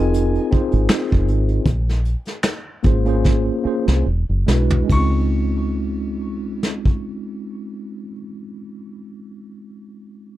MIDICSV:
0, 0, Header, 1, 6, 480
1, 0, Start_track
1, 0, Key_signature, -5, "major"
1, 0, Tempo, 762389
1, 1040, Time_signature, 4, 2, 24, 8
1, 1531, Tempo, 808625
1, 2491, Tempo, 858369
1, 6026, End_track
2, 0, Start_track
2, 0, Title_t, "Grand piano"
2, 0, Program_c, 0, 0
2, 0, Note_on_c, 0, 80, 102
2, 2471, Note_off_c, 0, 80, 0
2, 2979, Note_on_c, 0, 85, 66
2, 4759, Note_off_c, 0, 85, 0
2, 6026, End_track
3, 0, Start_track
3, 0, Title_t, "Tine electric piano"
3, 0, Program_c, 1, 4
3, 0, Control_c, 1, 64, 127
3, 0, Note_on_c, 1, 60, 63
3, 0, Note_on_c, 1, 63, 57
3, 0, Note_on_c, 1, 65, 59
3, 0, Note_on_c, 1, 68, 58
3, 0, Note_on_c, 1, 70, 70
3, 0, Note_on_c, 1, 72, 86
3, 0, Note_on_c, 1, 75, 64
3, 260, Note_off_c, 1, 60, 0
3, 264, Note_off_c, 1, 63, 0
3, 266, Note_off_c, 1, 65, 0
3, 269, Note_off_c, 1, 68, 0
3, 272, Note_off_c, 1, 70, 0
3, 320, Note_on_c, 1, 60, 68
3, 326, Note_on_c, 1, 63, 68
3, 331, Note_on_c, 1, 65, 66
3, 335, Note_on_c, 1, 68, 67
3, 343, Note_off_c, 1, 72, 0
3, 343, Note_on_c, 1, 72, 77
3, 1039, Note_off_c, 1, 60, 0
3, 1042, Note_off_c, 1, 63, 0
3, 1044, Note_off_c, 1, 65, 0
3, 1046, Note_off_c, 1, 68, 0
3, 1049, Control_c, 1, 64, 0
3, 1050, Note_off_c, 1, 72, 0
3, 1051, Note_off_c, 1, 75, 0
3, 1156, Control_c, 1, 64, 127
3, 1766, Note_on_c, 1, 58, 68
3, 1772, Note_on_c, 1, 61, 58
3, 1777, Note_on_c, 1, 65, 65
3, 1783, Note_on_c, 1, 68, 61
3, 1789, Note_on_c, 1, 72, 78
3, 1872, Note_off_c, 1, 58, 0
3, 1875, Note_off_c, 1, 61, 0
3, 1877, Note_off_c, 1, 65, 0
3, 1880, Note_off_c, 1, 68, 0
3, 1883, Note_off_c, 1, 72, 0
3, 1899, Note_on_c, 1, 58, 71
3, 1905, Note_on_c, 1, 61, 70
3, 1910, Note_on_c, 1, 65, 68
3, 1915, Note_on_c, 1, 68, 65
3, 1921, Note_on_c, 1, 72, 76
3, 2185, Note_off_c, 1, 58, 0
3, 2188, Note_off_c, 1, 61, 0
3, 2190, Note_off_c, 1, 65, 0
3, 2193, Note_off_c, 1, 68, 0
3, 2196, Note_off_c, 1, 72, 0
3, 2246, Note_on_c, 1, 58, 62
3, 2250, Note_on_c, 1, 61, 56
3, 2256, Note_on_c, 1, 65, 51
3, 2263, Note_on_c, 1, 68, 57
3, 2267, Note_on_c, 1, 72, 69
3, 2491, Note_off_c, 1, 58, 0
3, 2493, Note_off_c, 1, 61, 0
3, 2496, Note_off_c, 1, 65, 0
3, 2498, Control_c, 1, 64, 0
3, 2499, Note_off_c, 1, 68, 0
3, 2501, Note_off_c, 1, 72, 0
3, 2588, Control_c, 1, 64, 127
3, 2724, Note_on_c, 1, 56, 66
3, 2730, Note_on_c, 1, 62, 58
3, 2734, Note_on_c, 1, 64, 62
3, 2739, Note_on_c, 1, 66, 60
3, 2744, Note_on_c, 1, 71, 77
3, 2923, Note_off_c, 1, 56, 0
3, 2926, Note_off_c, 1, 62, 0
3, 2928, Note_off_c, 1, 64, 0
3, 2930, Note_off_c, 1, 66, 0
3, 2933, Note_off_c, 1, 71, 0
3, 2933, Note_on_c, 1, 56, 58
3, 2952, Note_on_c, 1, 61, 59
3, 2972, Control_c, 1, 64, 0
3, 2974, Note_on_c, 1, 63, 56
3, 2994, Note_on_c, 1, 65, 57
3, 3013, Note_on_c, 1, 60, 70
3, 3072, Control_c, 1, 64, 127
3, 4713, Note_off_c, 1, 56, 0
3, 4732, Note_off_c, 1, 61, 0
3, 4754, Note_off_c, 1, 63, 0
3, 4774, Note_off_c, 1, 65, 0
3, 4793, Note_off_c, 1, 60, 0
3, 6026, End_track
4, 0, Start_track
4, 0, Title_t, "Fingered electric bass"
4, 0, Program_c, 2, 33
4, 0, Note_on_c, 2, 29, 83
4, 235, Note_off_c, 2, 29, 0
4, 461, Note_on_c, 2, 32, 83
4, 543, Note_off_c, 2, 32, 0
4, 711, Note_on_c, 2, 29, 79
4, 809, Note_off_c, 2, 29, 0
4, 809, Note_on_c, 2, 32, 81
4, 998, Note_off_c, 2, 32, 0
4, 1045, Note_on_c, 2, 34, 86
4, 1346, Note_off_c, 2, 34, 0
4, 1779, Note_on_c, 2, 32, 74
4, 2158, Note_off_c, 2, 32, 0
4, 2389, Note_on_c, 2, 36, 74
4, 2474, Note_off_c, 2, 36, 0
4, 2498, Note_on_c, 2, 28, 73
4, 2598, Note_off_c, 2, 28, 0
4, 2627, Note_on_c, 2, 30, 61
4, 2709, Note_off_c, 2, 30, 0
4, 2731, Note_on_c, 2, 35, 74
4, 2920, Note_off_c, 2, 35, 0
4, 2967, Note_on_c, 2, 37, 72
4, 4747, Note_off_c, 2, 37, 0
4, 6026, End_track
5, 0, Start_track
5, 0, Title_t, "Muted fingered electric bass strokes"
5, 337, Note_on_c, 9, 29, 37
5, 399, Note_off_c, 9, 29, 0
5, 2253, Note_on_c, 9, 29, 36
5, 2313, Note_off_c, 9, 29, 0
5, 6026, End_track
6, 0, Start_track
6, 0, Title_t, "Drums"
6, 87, Note_on_c, 9, 42, 73
6, 150, Note_off_c, 9, 42, 0
6, 222, Note_on_c, 9, 42, 33
6, 285, Note_off_c, 9, 42, 0
6, 326, Note_on_c, 9, 42, 53
6, 331, Note_on_c, 9, 36, 78
6, 389, Note_off_c, 9, 42, 0
6, 394, Note_off_c, 9, 36, 0
6, 451, Note_on_c, 9, 42, 45
6, 514, Note_off_c, 9, 42, 0
6, 559, Note_on_c, 9, 42, 61
6, 560, Note_on_c, 9, 26, 77
6, 563, Note_on_c, 9, 38, 94
6, 622, Note_off_c, 9, 42, 0
6, 623, Note_off_c, 9, 26, 0
6, 626, Note_off_c, 9, 38, 0
6, 688, Note_on_c, 9, 42, 30
6, 707, Note_on_c, 9, 36, 83
6, 751, Note_off_c, 9, 42, 0
6, 770, Note_off_c, 9, 36, 0
6, 807, Note_on_c, 9, 42, 54
6, 870, Note_off_c, 9, 42, 0
6, 935, Note_on_c, 9, 42, 36
6, 998, Note_off_c, 9, 42, 0
6, 1043, Note_on_c, 9, 36, 99
6, 1043, Note_on_c, 9, 42, 75
6, 1106, Note_off_c, 9, 36, 0
6, 1106, Note_off_c, 9, 42, 0
6, 1192, Note_on_c, 9, 38, 31
6, 1255, Note_off_c, 9, 38, 0
6, 1291, Note_on_c, 9, 42, 56
6, 1354, Note_off_c, 9, 42, 0
6, 1419, Note_on_c, 9, 42, 45
6, 1428, Note_on_c, 9, 38, 30
6, 1482, Note_off_c, 9, 42, 0
6, 1491, Note_off_c, 9, 38, 0
6, 1528, Note_on_c, 9, 42, 71
6, 1531, Note_on_c, 9, 26, 78
6, 1534, Note_on_c, 9, 38, 95
6, 1588, Note_off_c, 9, 42, 0
6, 1590, Note_off_c, 9, 26, 0
6, 1593, Note_off_c, 9, 38, 0
6, 1770, Note_on_c, 9, 42, 56
6, 1776, Note_on_c, 9, 36, 87
6, 1830, Note_off_c, 9, 42, 0
6, 1835, Note_off_c, 9, 36, 0
6, 1902, Note_on_c, 9, 42, 39
6, 1961, Note_off_c, 9, 42, 0
6, 2013, Note_on_c, 9, 38, 44
6, 2018, Note_on_c, 9, 36, 77
6, 2073, Note_off_c, 9, 38, 0
6, 2078, Note_off_c, 9, 36, 0
6, 2389, Note_on_c, 9, 38, 48
6, 2448, Note_off_c, 9, 38, 0
6, 2733, Note_on_c, 9, 38, 78
6, 2789, Note_off_c, 9, 38, 0
6, 2857, Note_on_c, 9, 43, 71
6, 2913, Note_off_c, 9, 43, 0
6, 2964, Note_on_c, 9, 36, 82
6, 2966, Note_on_c, 9, 51, 59
6, 3020, Note_off_c, 9, 36, 0
6, 3022, Note_off_c, 9, 51, 0
6, 3934, Note_on_c, 9, 38, 45
6, 3990, Note_off_c, 9, 38, 0
6, 4060, Note_on_c, 9, 36, 63
6, 4116, Note_off_c, 9, 36, 0
6, 6026, End_track
0, 0, End_of_file